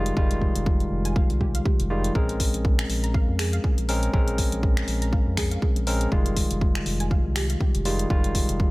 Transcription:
0.00 0.12 F1 medium
0.00 0.14 D#3 medium
0.00 0.14 G3 medium
0.00 0.14 G#3 medium
0.00 0.14 F4 medium
0.06 closed hi-hat medium
0.17 0.50 F1 medium
0.17 1.88 D#3 medium
0.17 1.88 G3 medium
0.17 1.88 G#3 medium
0.17 1.88 F4 medium
0.17 0.22 G4 medium
0.17 kick loud
0.31 closed hi-hat soft
0.42 kick medium
0.56 0.87 F1 medium
0.56 closed hi-hat medium
0.66 kick loud
0.80 closed hi-hat soft
0.91 1.24 F1 medium
1.05 1.09 G#5 medium
1.05 closed hi-hat medium
1.16 1.25 F5 medium
1.16 kick loud
1.30 1.61 C2 loud
1.30 closed hi-hat soft
1.41 1.46 G4 medium
1.41 kick medium
1.55 1.59 F5 medium
1.55 closed hi-hat medium
1.66 1.74 G4 medium
1.66 kick loud
1.80 2.11 F1 medium
1.80 closed hi-hat soft
1.90 2.13 D#3 medium
1.90 2.13 G3 medium
1.90 2.13 G#3 medium
1.90 2.13 F4 medium
1.90 1.99 G4 medium
2.04 closed hi-hat medium
2.15 2.48 A#1 medium
2.15 3.86 G#3 medium
2.15 3.86 C4 medium
2.15 3.86 C#4 medium
2.15 2.20 G#4 medium
2.15 3.86 A#4 medium
2.15 kick loud
2.29 closed hi-hat soft
2.40 kick medium
2.40 open hi-hat loud
2.54 2.85 A#1 medium
2.54 closed hi-hat medium
2.65 kick loud
2.79 finger snap medium
2.79 closed hi-hat soft
2.90 3.23 A#1 medium
2.90 open hi-hat medium
3.04 3.07 A#5 medium
3.04 closed hi-hat medium
3.14 3.23 F5 medium
3.14 kick loud
3.28 3.60 F2 loud
3.39 3.44 G#4 medium
3.39 finger snap medium
3.39 open hi-hat loud
3.53 3.57 F5 medium
3.53 closed hi-hat medium
3.64 3.72 G#4 medium
3.64 kick loud
3.78 4.09 A#1 medium
3.78 closed hi-hat soft
3.89 4.11 G#3 medium
3.89 4.11 C4 medium
3.89 4.11 C#4 medium
3.89 3.97 G#4 medium
3.89 4.11 A#4 loud
3.89 open hi-hat medium
4.03 closed hi-hat medium
4.13 4.47 A#1 medium
4.13 5.84 G#3 medium
4.13 5.84 C4 medium
4.13 5.84 C#4 medium
4.13 4.19 G#4 medium
4.13 5.84 A#4 medium
4.13 kick loud
4.28 closed hi-hat medium
4.38 kick medium
4.38 open hi-hat medium
4.52 4.83 A#1 medium
4.52 closed hi-hat medium
4.63 kick loud
4.77 finger snap medium
4.77 closed hi-hat soft
4.88 5.21 A#1 medium
4.88 open hi-hat medium
5.02 5.06 A#5 medium
5.02 closed hi-hat medium
5.13 5.21 F5 medium
5.13 kick loud
5.27 5.58 F2 loud
5.37 5.43 G#4 medium
5.37 finger snap medium
5.37 kick medium
5.37 open hi-hat medium
5.51 5.55 F5 medium
5.51 closed hi-hat medium
5.62 5.71 G#4 medium
5.62 kick loud
5.76 6.07 A#1 medium
5.76 closed hi-hat soft
5.87 6.09 G#3 medium
5.87 6.09 C4 medium
5.87 6.09 C#4 medium
5.87 5.96 G#4 medium
5.87 6.09 A#4 medium
5.87 open hi-hat medium
6.01 closed hi-hat medium
6.12 6.45 F1 loud
6.12 7.83 D#3 medium
6.12 7.83 G3 medium
6.12 7.83 G#3 medium
6.12 7.83 F4 medium
6.12 6.17 G4 medium
6.12 kick loud
6.26 closed hi-hat medium
6.37 kick medium
6.37 open hi-hat loud
6.51 6.82 F1 medium
6.51 closed hi-hat medium
6.61 kick loud
6.75 finger snap medium
6.75 closed hi-hat soft
6.86 7.19 F1 medium
6.86 open hi-hat medium
7.00 7.04 G#5 medium
7.00 closed hi-hat medium
7.11 7.20 F5 medium
7.11 kick loud
7.25 7.56 C2 medium
7.36 7.41 G4 loud
7.36 finger snap medium
7.36 open hi-hat loud
7.50 7.54 F5 medium
7.50 closed hi-hat medium
7.61 7.69 G4 medium
7.61 kick loud
7.75 8.06 F1 medium
7.75 closed hi-hat medium
7.85 8.08 D#3 medium
7.85 8.08 G3 medium
7.85 8.08 G#3 medium
7.85 8.08 F4 medium
7.85 7.94 G4 medium
7.85 open hi-hat medium
7.99 closed hi-hat medium
8.10 8.43 F1 medium
8.10 8.71 D#3 medium
8.10 8.71 G3 medium
8.10 8.71 G#3 medium
8.10 8.71 F4 medium
8.10 8.15 G4 medium
8.10 kick loud
8.24 closed hi-hat medium
8.35 kick medium
8.35 open hi-hat loud
8.49 8.71 F1 medium
8.49 closed hi-hat medium
8.60 kick loud

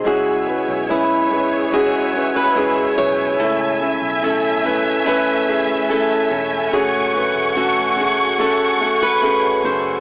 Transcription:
0.00 0.14 G#2 medium
0.04 0.65 C#2 medium
0.04 1.26 C#3 medium
0.04 3.38 C#3 medium
0.04 0.45 G#3 medium
0.04 0.45 C#4 medium
0.04 0.45 E4 medium
0.04 0.86 F#4 medium
0.04 0.45 G#4 loud
0.04 0.89 G#4 medium
0.04 3.36 G#4 medium
0.04 3.35 C#5 medium
0.04 6.69 E5 medium
0.04 10.00 G#5 medium
0.46 0.86 G#3 medium
0.46 0.87 C#4 medium
0.46 0.87 E4 medium
0.46 0.87 B4 medium
0.69 2.94 B1 medium
0.88 1.28 G#3 medium
0.88 1.28 C#4 medium
0.88 1.72 C#4 medium
0.88 1.29 E4 medium
0.88 1.73 E4 medium
0.88 1.76 E4 medium
0.88 1.73 G#4 medium
0.88 1.29 B4 medium
1.30 1.70 G#3 medium
1.30 1.70 C#4 medium
1.30 1.70 E4 medium
1.30 1.70 B4 medium
1.72 2.12 G#3 medium
1.72 2.12 C#4 medium
1.72 2.56 C#4 medium
1.72 2.12 E4 medium
1.72 2.56 E4 medium
1.72 2.13 F#4 loud
1.72 2.31 G#4 medium
1.72 2.56 G#4 medium
2.13 2.53 G#3 medium
2.13 2.54 C#4 medium
2.13 2.54 E4 medium
2.13 2.54 B4 medium
2.36 2.97 B4 medium
2.55 2.95 G#3 medium
2.55 2.95 C#4 medium
2.55 4.22 C#4 medium
2.55 2.95 E4 medium
2.55 2.97 E4 medium
2.55 2.96 G#4 loud
2.55 3.40 G#4 medium
2.97 3.36 B1 medium
2.97 3.37 G#3 medium
2.97 3.37 C#4 medium
2.97 4.23 E4 medium
2.97 3.37 E4 medium
2.97 3.37 B4 medium
2.97 5.98 C#5 loud
3.39 3.98 C#2 medium
3.39 4.60 C#3 medium
3.39 6.73 C#3 medium
3.39 3.78 A3 medium
3.39 10.00 A3 medium
3.39 3.79 C#4 medium
3.39 3.79 E4 medium
3.39 4.24 A4 medium
3.39 3.79 A4 loud
3.39 6.72 E5 loud
3.80 4.20 A3 medium
3.80 4.20 C#4 medium
3.80 4.21 E4 medium
3.80 4.21 A4 medium
4.02 6.27 B1 medium
4.22 4.62 A3 medium
4.22 5.06 A3 medium
4.22 4.62 C#4 medium
4.22 5.07 C#4 medium
4.22 4.63 E4 medium
4.22 4.63 A4 medium
4.22 5.07 A4 medium
4.64 5.04 A3 medium
4.64 5.04 C#4 medium
4.64 5.04 E4 medium
4.64 5.04 B4 loud
5.05 5.45 A3 loud
5.05 5.89 A3 medium
5.05 5.45 C#4 loud
5.05 5.90 C#4 medium
5.05 5.46 E4 loud
5.05 5.90 A4 medium
5.05 5.46 B4 loud
5.47 5.87 A3 medium
5.47 5.87 C#4 medium
5.47 5.87 E4 medium
5.47 5.88 G#4 medium
5.89 6.29 A3 medium
5.89 7.56 A3 medium
5.89 6.29 C#4 medium
5.89 6.31 C#4 medium
5.89 6.29 E4 medium
5.89 6.73 A4 loud
5.89 6.29 A4 loud
5.89 7.57 A4 medium
6.30 6.70 E1 medium
6.30 6.70 A3 medium
6.30 6.70 C#4 medium
6.30 7.57 C#4 medium
6.30 6.71 E4 medium
6.30 6.71 A4 medium
6.72 7.31 F#1 loud
6.72 10.00 F#2 medium
6.72 7.12 A3 loud
6.72 7.12 C#4 medium
6.72 7.12 F#4 medium
6.72 7.52 G#4 medium
6.72 7.13 C#5 loud
6.72 10.00 F#5 medium
6.72 10.00 C#6 loud
7.14 7.54 A3 medium
7.14 7.54 C#4 medium
7.14 7.54 F#4 medium
7.14 7.54 B4 medium
7.35 9.60 E1 medium
7.56 7.95 A3 medium
7.56 8.39 A3 medium
7.56 7.95 C#4 medium
7.56 8.39 C#4 medium
7.56 7.96 F#4 medium
7.56 8.39 F#4 medium
7.56 7.96 A4 medium
7.56 8.40 A4 medium
7.96 8.36 A3 medium
7.96 8.37 C#4 medium
7.96 8.37 F#4 medium
7.96 8.37 G#4 medium
8.38 8.78 A3 medium
8.38 9.22 A3 medium
8.38 8.79 C#4 medium
8.38 9.22 C#4 medium
8.38 8.79 F#4 medium
8.38 9.04 A4 medium
8.38 8.79 A4 loud
8.38 9.23 A4 medium
8.80 9.20 A3 medium
8.80 9.20 C#4 medium
8.80 9.21 F#4 medium
8.80 9.21 A4 medium
9.02 9.64 B4 medium
9.22 9.62 A3 medium
9.22 10.00 A3 medium
9.22 9.62 C#4 medium
9.22 9.64 C#4 medium
9.22 9.62 F#4 medium
9.22 9.63 G#4 loud
9.22 10.00 A4 medium
9.63 10.00 F#1 medium
9.63 10.00 A3 medium
9.63 10.00 C#4 medium
9.63 10.00 F#4 medium
9.63 10.00 A4 medium
9.63 10.00 C5 medium

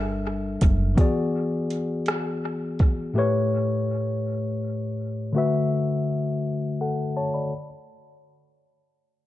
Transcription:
0.00 0.57 G1 medium
0.00 0.92 G3 medium
0.00 0.93 D4 medium
0.00 0.94 A4 medium
0.00 0.94 A#4 medium
0.00 0.95 E5 medium
0.61 0.94 F#1 medium
0.61 kick medium
0.61 closed hi-hat medium
0.95 3.10 E3 medium
0.95 3.11 B3 medium
0.95 3.11 F#4 medium
0.95 3.12 G#4 medium
0.95 kick loud
0.95 closed hi-hat medium
1.01 3.13 D5 medium
1.70 closed hi-hat medium
2.06 cross-stick medium
2.06 closed hi-hat medium
2.79 kick medium
2.79 closed hi-hat medium
3.14 5.29 A2 medium
3.14 5.29 A3 medium
3.14 5.30 G4 medium
3.18 5.31 B4 medium
3.18 5.31 C#5 medium
5.33 7.47 D3 medium
5.33 7.48 A3 medium
5.33 7.49 F#4 medium
5.37 6.78 B4 medium
5.37 6.78 E5 medium
6.81 7.14 A4 soft
6.81 7.14 F#5 soft
7.17 7.33 C#5 soft
7.17 7.33 A5 medium
7.34 7.69 D5 soft
7.34 7.68 B5 soft

